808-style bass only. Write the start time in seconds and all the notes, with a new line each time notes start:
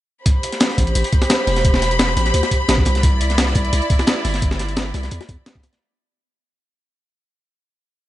0.78 A1
0.95 A1
1.47 E1
2.17 A1
2.34 D2
2.69 A1
2.86 C2
3.55 C2
3.73 C2
4.25 G1
4.94 C2
5.12 E2
5.29 E2